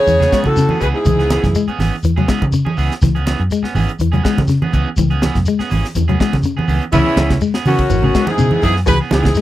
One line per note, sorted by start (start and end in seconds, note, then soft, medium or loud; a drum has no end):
0.00 0.48 C#3 medium
0.00 0.48 G#4 loud
0.00 0.41 C#5 loud
0.07 0.28 E2 medium
0.07 0.16 E3 medium
0.07 closed hi-hat medium
0.07 shekere medium
0.20 0.30 B3 soft
0.20 0.31 C#4 medium
0.20 0.32 G#4 medium
0.20 muted clean electric guitar stroke medium
0.20 snare soft
0.20 closed hi-hat soft
0.20 low conga medium
0.31 0.47 E3 medium
0.31 0.47 G#3 medium
0.31 0.47 B3 medium
0.31 0.47 C#4 medium
0.31 0.48 G#4 medium
0.31 kick medium
0.31 snare medium
0.31 closed hi-hat soft
0.31 shekere soft
0.44 0.79 A2 medium
0.44 0.66 C#3 medium
0.44 0.80 F#4 medium
0.44 0.81 A4 medium
0.44 kick medium
0.44 closed hi-hat soft
0.44 high conga medium
0.56 0.72 C#3 medium
0.56 snare soft
0.56 closed hi-hat medium
0.56 shekere medium
0.69 0.81 B3 soft
0.69 0.81 C#4 soft
0.69 0.81 G#4 medium
0.69 high conga medium
0.80 0.92 C#2 medium
0.80 0.86 B2 medium
0.80 0.97 E3 medium
0.80 0.97 B3 medium
0.80 0.97 C#4 medium
0.80 0.87 G#4 medium
0.80 0.97 G#4 medium
0.80 0.87 B4 loud
0.80 kick medium
0.80 closed hi-hat soft
0.80 shekere soft
0.93 1.63 G#2 medium
0.93 1.64 E4 medium
0.93 1.64 G#4 medium
1.05 1.37 C#2 loud
1.05 1.20 E3 medium
1.05 kick loud
1.05 closed hi-hat medium
1.05 low conga medium
1.05 shekere medium
1.19 1.30 B3 soft
1.19 1.30 C#4 soft
1.19 1.30 G#4 medium
1.19 snare soft
1.19 closed hi-hat soft
1.30 1.46 E3 medium
1.30 1.46 B3 medium
1.30 1.46 C#4 medium
1.30 1.46 G#4 medium
1.30 snare medium
1.30 closed hi-hat medium
1.30 high conga loud
1.30 shekere soft
1.44 1.53 F#2 medium
1.44 kick medium
1.44 snare soft
1.44 closed hi-hat soft
1.44 high conga medium
1.44 low conga medium
1.55 1.70 G#3 medium
1.55 closed hi-hat medium
1.55 shekere medium
1.67 1.78 B3 soft
1.67 1.79 C#4 medium
1.67 1.79 G#4 medium
1.67 muted fingered electric bass stroke soft
1.67 closed hi-hat soft
1.79 1.90 G#1 medium
1.79 1.95 E3 medium
1.79 1.95 B3 medium
1.79 1.95 C#4 medium
1.79 1.95 G#4 medium
1.79 snare soft
1.79 open hi-hat medium
1.79 high conga medium
1.79 shekere soft
2.03 2.24 E2 medium
2.03 2.12 E3 medium
2.03 closed hi-hat medium
2.03 shekere medium
2.16 2.24 F#3 medium
2.16 2.27 B3 soft
2.16 2.28 C#4 soft
2.16 2.28 G#4 medium
2.16 closed hi-hat soft
2.16 low conga medium
2.28 2.43 E3 medium
2.28 2.43 G#3 medium
2.28 2.43 B3 medium
2.28 2.44 C#4 medium
2.28 2.44 G#4 medium
2.28 kick medium
2.28 snare medium
2.28 closed hi-hat medium
2.28 shekere soft
2.42 2.62 C#3 medium
2.42 kick medium
2.42 closed hi-hat soft
2.42 high conga medium
2.52 2.68 C#3 medium
2.52 closed hi-hat medium
2.52 shekere medium
2.65 2.77 C#4 medium
2.65 2.77 G#4 medium
2.65 muted clean electric guitar stroke soft
2.65 high conga medium
2.77 2.88 C#2 medium
2.77 2.93 E3 medium
2.77 2.93 B3 medium
2.77 2.93 C#4 medium
2.77 2.93 G#4 medium
2.77 open hi-hat medium
2.77 shekere soft
2.92 snare soft
2.92 closed hi-hat soft
3.02 3.33 C#2 loud
3.02 3.17 E3 medium
3.02 kick medium
3.02 snare soft
3.02 closed hi-hat medium
3.02 low conga medium
3.02 shekere medium
3.15 3.25 B3 soft
3.15 3.25 C#4 medium
3.15 3.25 G#4 medium
3.15 closed hi-hat soft
3.25 3.41 E3 medium
3.25 3.41 B3 medium
3.25 3.42 C#4 medium
3.25 3.42 G#4 medium
3.25 snare medium
3.25 closed hi-hat medium
3.25 high conga medium
3.25 shekere soft
3.40 3.49 F#2 medium
3.40 closed hi-hat soft
3.51 3.66 G#3 medium
3.51 closed hi-hat medium
3.51 shekere loud
3.63 3.74 B3 medium
3.63 3.74 C#4 medium
3.63 muted fingered electric bass stroke soft
3.63 muted clean electric guitar stroke medium
3.63 snare soft
3.75 3.86 G#1 loud
3.75 3.90 E3 medium
3.75 3.90 B3 medium
3.75 3.91 C#4 medium
3.75 3.91 G#4 medium
3.75 open hi-hat medium
3.75 high conga medium
3.75 shekere soft
3.89 closed hi-hat soft
3.99 4.20 E2 medium
3.99 4.08 E3 medium
3.99 closed hi-hat medium
3.99 shekere medium
4.12 4.20 F#3 medium
4.12 4.22 B3 soft
4.12 4.23 C#4 medium
4.12 4.23 G#4 medium
4.12 closed hi-hat soft
4.12 low conga medium
4.24 4.39 E3 medium
4.24 4.39 G#3 medium
4.24 4.39 B3 medium
4.24 4.39 C#4 medium
4.24 4.39 G#4 medium
4.24 kick medium
4.24 snare medium
4.24 closed hi-hat medium
4.24 shekere soft
4.37 4.57 C#3 medium
4.37 kick medium
4.37 snare soft
4.37 closed hi-hat soft
4.37 high conga medium
4.47 4.63 C#3 medium
4.47 snare soft
4.47 closed hi-hat medium
4.47 shekere medium
4.62 4.72 B3 soft
4.62 4.72 C#4 medium
4.62 4.72 G#4 medium
4.62 high conga medium
4.72 4.84 C#2 loud
4.72 4.88 E3 medium
4.72 4.88 B3 medium
4.72 4.88 C#4 medium
4.72 4.89 G#4 medium
4.72 kick medium
4.72 closed hi-hat soft
4.72 high conga medium
4.72 shekere soft
4.97 5.29 C#2 medium
4.97 5.13 E3 medium
4.97 kick medium
4.97 closed hi-hat medium
4.97 low conga medium
4.97 shekere medium
5.10 5.21 B3 soft
5.10 5.20 C#4 medium
5.10 5.21 G#4 medium
5.10 closed hi-hat soft
5.21 5.37 E3 medium
5.21 5.37 B3 medium
5.21 5.37 C#4 medium
5.21 5.37 G#4 medium
5.21 snare medium
5.21 closed hi-hat soft
5.21 high conga loud
5.21 shekere soft
5.35 5.44 F#2 medium
5.35 kick medium
5.35 snare soft
5.35 closed hi-hat soft
5.35 low conga medium
5.45 5.62 G#3 medium
5.45 closed hi-hat medium
5.45 shekere medium
5.59 5.71 B3 medium
5.59 5.70 C#4 medium
5.59 5.70 G#4 medium
5.59 muted fingered electric bass stroke soft
5.59 snare soft
5.59 closed hi-hat soft
5.69 5.82 G#1 medium
5.69 5.86 E3 medium
5.69 5.86 C#4 medium
5.69 5.86 G#4 medium
5.69 open hi-hat medium
5.69 high conga medium
5.69 shekere soft
5.85 snare soft
5.95 6.15 E2 medium
5.95 6.04 E3 medium
5.95 closed hi-hat medium
5.95 high conga medium
5.95 shekere medium
6.08 6.15 F#3 medium
6.08 6.19 B3 soft
6.08 6.19 C#4 medium
6.08 6.19 G#4 medium
6.08 closed hi-hat soft
6.08 low conga medium
6.19 6.35 E3 medium
6.19 6.34 G#3 medium
6.19 6.35 B3 medium
6.19 6.35 C#4 medium
6.19 6.35 G#4 medium
6.19 kick medium
6.19 snare medium
6.19 closed hi-hat medium
6.19 shekere soft
6.33 6.53 C#3 medium
6.33 kick medium
6.33 snare soft
6.33 closed hi-hat soft
6.33 high conga medium
6.43 6.59 C#3 medium
6.43 closed hi-hat medium
6.43 shekere medium
6.57 6.67 B3 soft
6.57 6.67 C#4 soft
6.57 6.68 G#4 medium
6.57 high conga medium
6.68 6.79 C#2 medium
6.68 6.83 E3 medium
6.68 6.83 B3 medium
6.68 6.84 C#4 medium
6.68 6.84 G#4 medium
6.68 open hi-hat medium
6.68 high conga medium
6.68 shekere soft
6.82 closed hi-hat soft
6.92 7.03 C#2 loud
6.92 7.38 E2 loud
6.92 7.05 E3 medium
6.92 7.08 E3 medium
6.92 7.06 B3 medium
6.92 7.06 C#4 medium
6.92 7.38 C#4 medium
6.92 7.38 E4 loud
6.92 7.05 G#4 medium
6.92 kick loud
6.92 ride bell medium
6.92 low conga medium
6.92 shekere medium
7.06 7.15 B3 soft
7.06 7.16 C#4 medium
7.06 7.16 G#4 medium
7.16 7.37 C#2 medium
7.16 7.32 E3 medium
7.16 7.32 B3 medium
7.16 7.32 C#4 medium
7.16 7.32 G#4 medium
7.16 snare medium
7.16 ride bell medium
7.16 high conga loud
7.16 shekere soft
7.30 kick medium
7.30 snare medium
7.30 ride bell medium
7.30 low conga medium
7.41 7.56 G#3 medium
7.41 ride bell medium
7.41 shekere medium
7.54 7.65 B3 soft
7.54 7.66 C#4 medium
7.54 7.66 G#4 medium
7.54 snare medium
7.65 8.26 F#2 medium
7.65 7.86 C#3 medium
7.65 7.81 E3 medium
7.65 7.81 B3 medium
7.65 8.28 C#4 medium
7.65 7.82 C#4 medium
7.65 8.24 F#4 medium
7.65 7.82 G#4 medium
7.65 open hi-hat medium
7.65 high conga medium
7.65 shekere soft
7.79 kick medium
7.79 ride bell medium
7.89 8.10 G#1 medium
7.89 7.97 E3 medium
7.89 ride bell medium
7.89 high conga medium
7.89 shekere medium
8.03 8.10 C#3 medium
8.03 8.14 B3 soft
8.03 8.15 G#4 soft
8.03 muted clean electric guitar stroke soft
8.03 low conga medium
8.14 8.30 E3 medium
8.14 8.29 G#3 medium
8.14 8.30 B3 medium
8.14 8.30 C#4 medium
8.14 8.31 G#4 medium
8.14 kick medium
8.14 snare medium
8.14 ride bell soft
8.14 shekere soft
8.25 8.61 G#2 medium
8.25 8.62 E4 medium
8.25 8.63 G#4 loud
8.25 snare soft
8.25 high conga medium
8.38 8.49 B2 medium
8.38 8.53 C#3 medium
8.38 ride bell medium
8.38 shekere medium
8.51 8.63 B3 soft
8.51 8.63 C#4 soft
8.51 8.63 G#4 medium
8.51 high conga medium
8.62 8.83 F#2 medium
8.62 8.73 G#2 medium
8.62 8.78 E3 medium
8.62 8.79 B3 medium
8.62 8.79 C#4 medium
8.62 8.74 E4 medium
8.62 8.75 G#4 loud
8.62 8.79 G#4 medium
8.62 kick medium
8.62 open hi-hat medium
8.62 high conga medium
8.62 shekere soft
8.76 snare soft
8.86 8.98 C#2 loud
8.86 8.97 B2 loud
8.86 9.02 E3 medium
8.86 8.98 G#4 loud
8.86 8.98 B4 loud
8.86 kick loud
8.86 ride bell medium
8.86 low conga medium
8.86 shekere medium
9.00 9.11 B3 soft
9.00 9.11 C#4 soft
9.00 9.12 G#4 medium
9.11 9.32 C#2 medium
9.11 9.41 G#2 medium
9.11 9.27 E3 medium
9.11 9.27 B3 medium
9.11 9.27 C#4 medium
9.11 9.41 E4 medium
9.11 9.41 G#4 loud
9.11 9.28 G#4 medium
9.11 snare medium
9.11 ride bell medium
9.11 high conga loud
9.11 shekere soft
9.24 kick medium
9.24 snare medium
9.24 high conga medium
9.24 low conga medium
9.35 9.41 G#3 medium
9.35 snare soft
9.35 ride bell medium
9.35 shekere loud